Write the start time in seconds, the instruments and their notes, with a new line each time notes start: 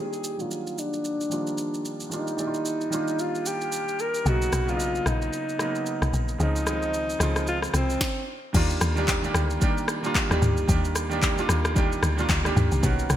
Already playing: grand piano D#3 G3 A#3
0.00 grand piano D4 F4, alto saxophone G4
0.13 shaker
0.24 shaker
0.38 grand piano D#3 F#3 A#3 D4 F4, alto saxophone F4, shaker
0.45 grand piano G3
0.51 shaker
0.67 shaker
0.78 alto saxophone D4, shaker
0.93 shaker
1.04 shaker
1.21 shaker
1.29 grand piano D#3 F3 A#3 D4 F4, shaker
1.37 grand piano G3
1.47 shaker
1.58 shaker
1.74 shaker
1.85 shaker
2.00 shaker
2.10 grand piano D#3 G3 A#3 D4 F4, alto saxophone D#4, shaker
2.28 shaker
2.37 grand piano D#3 G3 A#3 E4 D5, shaker
2.47 grand piano F4
2.54 shaker
2.65 shaker
2.81 shaker
2.90 grand piano D#3 G3 A#3 D4 F4, shaker
3.08 shaker
3.19 alto saxophone F4, shaker
3.35 shaker
3.46 alto saxophone G4, shaker
3.61 shaker
3.72 shaker
3.88 shaker
3.99 alto saxophone A#4, shaker
4.14 shaker
4.24 log drum bass B1, grand piano C#3 F#3 A#3 B3 D#4, alto saxophone F#4, shaker
4.42 shaker
4.53 log drum bass B1, cross-stick, shaker
4.66 grand piano C#3 F#3 A#3 B3 D4, alto saxophone F4, shaker
4.77 grand piano D#4, shaker
4.95 shaker
5.06 log drum bass A#1, alto saxophone D#4, cross-stick, shaker
5.22 shaker
5.33 shaker
5.49 shaker
5.58 grand piano C#3 F#3 A#3 B3 D#4, cross-stick, shaker
5.75 shaker
5.86 shaker
6.02 log drum bass B1, cross-stick, shaker
6.13 log drum bass A#1, shaker
6.28 shaker
6.38 log drum bass C#2, grand piano C#3 F3 G#3 C4 D#4, alto saxophone D#4, shaker
6.56 shaker
6.65 grand piano C#3 D#3 G#3 C4 D#4, cross-stick, shaker
6.73 grand piano F3
6.82 shaker
6.94 shaker
7.09 shaker
7.19 log drum bass C#2, grand piano C#3 F3 G#3 C4 F4, cross-stick, shaker
7.36 cross-stick, shaker
7.47 alto saxophone F4, shaker
7.62 cross-stick, shaker
7.74 log drum bass C2, alto saxophone C4, cross-stick, shaker
7.90 shaker
8.01 kick, snare
8.53 log drum bass D#2, grand piano D#3 G3 A#3 D4 F4, kick, crash, shaker
8.70 shaker
8.81 log drum bass D#2, cross-stick, shaker
8.95 grand piano D#3 G3 A#3 D4 G4, shaker
9.08 kick, clap, shaker
9.22 grand piano D#3 G3 A#3 D4 G4, shaker
9.34 log drum bass D2, cross-stick, shaker
9.50 shaker
9.60 grand piano D#3 G3 A#3 D4 G4, kick, shaker
9.78 shaker
9.88 cross-stick, shaker
10.02 grand piano D#3 G3 A#3 D4 F4, shaker
10.15 kick, clap, shaker
10.29 log drum bass D#2, grand piano D#3 G3 A#3 D4 G4, cross-stick, shaker
10.42 log drum bass D2, mid tom, shaker
10.57 shaker
10.67 log drum bass D#2, grand piano D#3 G3 A#3 D4 G4, kick, shaker
10.85 shaker
10.95 cross-stick, shaker
11.10 grand piano D#3 G3 A#3 D4 G4, shaker
11.22 kick, clap, shaker
11.36 grand piano D#3 G3 A#3 D4 F4, shaker
11.49 log drum bass D#2, cross-stick, shaker
11.65 cross-stick, shaker
11.74 grand piano D#3 G3 A#3 D4 G4, kick, shaker
11.92 shaker
12.03 log drum bass D2, cross-stick, shaker
12.17 grand piano D#3 G3 A#3 D4 F4, shaker
12.29 log drum bass D2, kick, clap, shaker
12.43 grand piano D#3 G3 A#3 D4 G4, cross-stick, shaker
12.56 log drum bass D#2, mid tom, shaker
12.72 log drum bass C2, shaker
12.81 log drum bass B1, grand piano D#3 A#3 B3 C#4 F#4, kick, shaker
12.99 shaker
13.10 log drum bass B1, cross-stick, shaker